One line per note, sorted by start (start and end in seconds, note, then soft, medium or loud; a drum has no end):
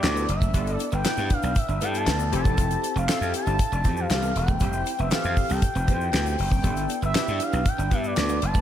0.00 0.25 D2 loud
0.00 0.24 B3 medium
0.00 0.24 D4 medium
0.00 0.25 E4 medium
0.00 0.25 G4 medium
0.00 0.30 D5 medium
0.00 clap medium
0.00 closed hi-hat medium
0.04 snare loud
0.04 shaker medium
0.16 0.26 B3 medium
0.16 shaker medium
0.29 0.50 F#1 medium
0.29 0.76 E5 loud
0.29 muted clean electric guitar stroke soft
0.29 closed hi-hat medium
0.42 0.52 A3 medium
0.42 kick medium
0.42 shaker medium
0.54 0.76 G1 loud
0.54 0.64 G3 medium
0.54 0.85 B3 medium
0.54 0.85 D4 medium
0.54 0.85 E4 medium
0.54 0.86 A4 medium
0.54 kick loud
0.54 closed hi-hat medium
0.54 shaker medium
0.67 closed hi-hat soft
0.67 shaker medium
0.76 0.89 D5 loud
0.76 muted clean electric guitar stroke soft
0.76 shaker medium
0.80 closed hi-hat medium
0.92 1.03 G1 loud
0.92 1.02 B3 medium
0.92 1.34 G5 loud
0.92 shaker soft
1.05 1.52 B3 medium
1.05 1.15 B3 medium
1.05 1.52 D4 medium
1.05 1.52 E4 medium
1.05 1.52 B4 medium
1.05 muted slap bass stroke soft
1.05 snare loud
1.05 clap medium
1.05 closed hi-hat loud
1.05 shaker medium
1.17 1.28 G2 loud
1.17 shaker medium
1.30 1.60 F5 medium
1.30 muted clean electric guitar stroke soft
1.30 kick loud
1.30 closed hi-hat medium
1.30 shaker medium
1.43 1.54 B1 medium
1.43 1.54 D4 medium
1.43 shaker medium
1.55 1.85 E5 medium
1.55 muted clean electric guitar stroke soft
1.55 kick loud
1.55 closed hi-hat loud
1.55 shaker medium
1.69 1.79 G1 medium
1.69 1.79 D4 medium
1.69 shaker medium
1.81 2.08 G2 medium
1.81 1.91 B3 medium
1.81 2.28 B3 medium
1.81 2.28 D4 medium
1.81 2.28 E4 medium
1.81 2.28 A4 medium
1.81 1.98 G5 loud
1.81 closed hi-hat medium
1.81 shaker medium
1.94 2.34 A5 loud
1.94 closed hi-hat medium
1.94 shaker soft
2.07 2.34 D2 loud
2.07 2.17 B3 medium
2.07 snare loud
2.07 clap medium
2.07 closed hi-hat medium
2.07 shaker medium
2.19 muted clean electric guitar stroke soft
2.19 shaker medium
2.32 2.75 F1 loud
2.32 2.93 C4 medium
2.32 2.93 E4 medium
2.32 2.93 G4 medium
2.32 2.93 A4 medium
2.32 2.93 A5 loud
2.32 closed hi-hat medium
2.45 2.55 C4 medium
2.45 kick loud
2.45 shaker medium
2.58 2.68 F4 medium
2.58 kick loud
2.58 closed hi-hat medium
2.58 shaker medium
2.71 closed hi-hat soft
2.71 shaker medium
2.84 muted clean electric guitar stroke soft
2.84 closed hi-hat medium
2.84 shaker medium
2.96 3.06 F1 loud
2.96 3.06 C4 medium
2.96 3.33 F5 medium
2.96 shaker medium
3.08 3.55 C4 medium
3.08 3.19 C4 medium
3.08 3.55 E4 medium
3.08 3.55 G4 medium
3.08 3.55 A4 medium
3.08 muted slap bass stroke soft
3.08 snare loud
3.08 clap medium
3.08 closed hi-hat loud
3.08 shaker medium
3.21 3.32 F2 medium
3.21 shaker soft
3.34 4.01 A5 loud
3.34 muted clean electric guitar stroke soft
3.34 closed hi-hat medium
3.34 shaker medium
3.47 3.57 G1 medium
3.47 3.57 D4 medium
3.47 shaker medium
3.59 muted clean electric guitar stroke soft
3.59 kick loud
3.59 closed hi-hat loud
3.59 shaker medium
3.72 3.87 F1 loud
3.72 3.82 D4 medium
3.72 shaker medium
3.84 4.06 F2 loud
3.84 4.31 E3 medium
3.84 3.95 C4 medium
3.84 4.31 C4 medium
3.84 4.32 G4 medium
3.84 4.32 A4 medium
3.84 kick medium
3.84 closed hi-hat medium
3.84 shaker medium
3.97 4.39 F5 loud
3.97 shaker medium
4.10 4.32 C2 loud
4.10 snare loud
4.10 clap medium
4.10 closed hi-hat medium
4.10 shaker medium
4.23 4.33 B3 medium
4.23 shaker soft
4.35 4.57 E1 medium
4.35 5.00 G5 loud
4.35 muted clean electric guitar stroke soft
4.35 closed hi-hat medium
4.48 4.58 A3 medium
4.48 kick medium
4.48 shaker soft
4.60 4.82 F1 loud
4.60 4.71 G3 medium
4.60 4.92 C4 medium
4.60 4.92 E4 medium
4.60 4.92 G4 medium
4.60 4.92 C5 medium
4.60 kick loud
4.60 closed hi-hat medium
4.60 shaker medium
4.73 shaker medium
4.86 muted clean electric guitar stroke soft
4.86 closed hi-hat medium
4.86 shaker medium
4.99 5.10 F1 medium
4.99 5.09 B3 medium
4.99 5.12 E5 medium
4.99 shaker soft
5.11 5.58 E3 medium
5.11 5.22 B3 medium
5.11 5.58 C4 medium
5.11 5.58 G4 medium
5.11 5.58 A4 medium
5.11 5.53 F5 loud
5.11 snare loud
5.11 clap medium
5.11 closed hi-hat loud
5.11 shaker medium
5.24 5.35 F2 loud
5.24 shaker medium
5.37 muted clean electric guitar stroke soft
5.37 kick loud
5.37 open hi-hat medium
5.37 shaker medium
5.50 5.61 C2 medium
5.50 5.60 C4 medium
5.50 6.40 G5 loud
5.50 shaker medium
5.62 muted clean electric guitar stroke soft
5.62 kick loud
5.62 closed hi-hat medium
5.62 shaker medium
5.75 5.90 F1 loud
5.75 5.85 C4 medium
5.75 shaker medium
5.87 6.10 F2 medium
5.87 5.98 B3 medium
5.87 6.34 C4 medium
5.87 6.34 E4 medium
5.87 6.34 G4 medium
5.87 6.35 C5 medium
5.87 kick medium
5.87 closed hi-hat medium
5.87 shaker soft
6.01 shaker soft
6.13 6.35 D2 medium
6.13 6.23 B3 medium
6.13 snare loud
6.13 clap medium
6.13 closed hi-hat medium
6.13 shaker medium
6.26 muted clean electric guitar stroke soft
6.26 shaker medium
6.39 6.61 F#1 medium
6.39 7.00 G5 loud
6.39 open hi-hat medium
6.51 6.62 C4 medium
6.51 kick medium
6.51 shaker medium
6.63 6.86 G1 loud
6.63 6.74 G3 medium
6.63 6.95 B3 medium
6.63 6.95 D4 medium
6.63 6.95 E4 medium
6.63 6.95 A4 medium
6.63 kick loud
6.63 closed hi-hat medium
6.63 shaker medium
6.77 closed hi-hat soft
6.77 shaker medium
6.89 muted clean electric guitar stroke soft
6.89 closed hi-hat medium
6.89 shaker medium
7.02 7.13 G1 medium
7.02 7.12 B3 medium
7.02 7.45 E5 loud
7.02 shaker soft
7.14 7.62 B3 medium
7.14 7.25 B3 medium
7.14 7.62 D4 medium
7.14 7.62 E4 medium
7.14 7.62 G4 medium
7.14 muted slap bass stroke soft
7.14 snare loud
7.14 clap medium
7.14 closed hi-hat loud
7.14 shaker medium
7.28 7.39 G2 loud
7.28 shaker medium
7.40 7.70 F5 loud
7.40 muted clean electric guitar stroke soft
7.40 closed hi-hat medium
7.40 shaker medium
7.53 7.64 B1 medium
7.53 7.63 D4 medium
7.53 shaker medium
7.66 7.95 G5 loud
7.66 muted clean electric guitar stroke soft
7.66 kick loud
7.66 closed hi-hat medium
7.66 shaker medium
7.78 7.90 G1 loud
7.78 7.89 D4 medium
7.78 shaker medium
7.90 8.13 G2 medium
7.90 8.38 B3 medium
7.90 8.02 B3 medium
7.90 8.38 D4 medium
7.90 8.38 E4 medium
7.90 8.38 B4 medium
7.90 8.08 E5 loud
7.90 kick loud
7.90 closed hi-hat medium
7.90 shaker medium
8.04 8.46 D5 loud
8.04 shaker soft
8.16 8.38 D2 loud
8.16 snare loud
8.16 clap medium
8.16 closed hi-hat medium
8.16 shaker medium
8.29 8.40 B3 medium
8.29 shaker medium
8.42 8.61 F#1 medium
8.42 8.61 A5 loud
8.42 muted clean electric guitar stroke soft
8.42 closed hi-hat medium
8.54 8.61 A3 medium
8.54 kick medium
8.54 shaker medium